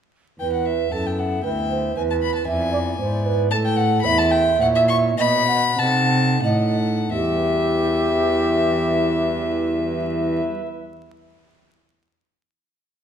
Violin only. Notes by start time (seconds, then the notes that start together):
0.40 G5
0.53 F#5
0.66 E5
0.92 A5
1.07 G5
1.19 F#5
1.44 G5
1.97 G#5
2.10 A5
2.23 B5
2.35 A5
2.47 G#5
3.51 A5
3.65 G5
3.77 F#5
4.03 B5
4.18 A5
4.31 G5
4.61 F#5
4.75 E5
4.88 C#6
5.18 B5
5.79 A5
6.43 F#5
7.12 E5